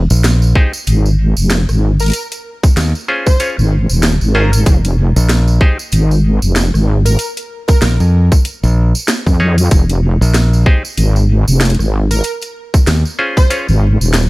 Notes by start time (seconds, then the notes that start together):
0.10 A#1, tambourine
0.24 snare, closed hi-hat, tambourine
0.42 tambourine
0.55 D#4 G4 G#4 C5, kick
0.73 tambourine
0.87 G#1, closed hi-hat, tambourine
1.06 tambourine
1.37 F1, tambourine
1.50 snare, closed hi-hat, tambourine
1.69 G#1, cross-stick, tambourine
2.00 A#4, closed hi-hat, tambourine
2.02 closed hi-hat
2.04 closed hi-hat
2.06 closed hi-hat
2.08 closed hi-hat
2.10 closed hi-hat
2.12 closed hi-hat, tambourine
2.13 closed hi-hat
2.32 closed hi-hat, tambourine
2.63 kick, tambourine
2.77 D#2, cross-stick, snare, closed hi-hat, tambourine
2.95 tambourine
3.08 C#4 F4 G#4 C5
3.26 C5, kick, tambourine
3.40 C#4 F4 G#4 C#5, closed hi-hat, tambourine
3.58 G#1, tambourine
3.89 D#1, tambourine
4.02 snare, closed hi-hat, tambourine
4.21 G#1, tambourine
4.34 C#4 F4 G#4 A#4 C5
4.53 closed hi-hat, tambourine
4.66 F1, kick, closed hi-hat, tambourine
4.85 closed hi-hat, tambourine
5.16 A#1, tambourine
5.29 snare, closed hi-hat, tambourine
5.48 tambourine
5.61 D#4 G4 G#4 C5, kick
5.79 tambourine
5.92 G#1, closed hi-hat, tambourine
6.11 tambourine
6.42 F1, tambourine
6.56 snare, closed hi-hat, tambourine
6.74 G#1, cross-stick, tambourine
7.05 A#4, closed hi-hat, tambourine
7.19 closed hi-hat, tambourine
7.37 closed hi-hat, tambourine
7.68 A#4, kick, tambourine
7.82 A#1 A#4, cross-stick, snare, closed hi-hat, tambourine
8.00 F2, tambourine
8.32 kick, tambourine
8.45 closed hi-hat, tambourine
8.63 A#1, tambourine
8.95 tambourine
9.08 snare, closed hi-hat, tambourine
9.26 F2, kick, tambourine
9.40 C#4 D#4 G#4 C#5
9.58 closed hi-hat, tambourine
9.71 F1, kick, closed hi-hat, tambourine
9.90 closed hi-hat, tambourine
10.21 A#1, tambourine
10.34 snare, closed hi-hat, tambourine
10.53 tambourine
10.66 D#4 G4 G#4 C5, kick
10.85 tambourine
10.98 G#1, closed hi-hat, tambourine
11.16 tambourine
11.48 F1, tambourine
11.61 snare, closed hi-hat, tambourine
11.65 closed hi-hat
11.70 closed hi-hat
11.75 closed hi-hat
11.79 G#1, cross-stick, tambourine
12.11 A#4, closed hi-hat, tambourine
12.24 closed hi-hat, tambourine
12.42 closed hi-hat, tambourine
12.74 kick, tambourine
12.87 D#2, cross-stick, snare, closed hi-hat, tambourine
13.05 tambourine
13.19 C#4 F4 G#4 C5
13.37 C5, kick, tambourine
13.50 C#4 F4 G#4 C#5, closed hi-hat, tambourine
13.68 G#1, tambourine
14.00 D#1, tambourine
14.14 snare, closed hi-hat, tambourine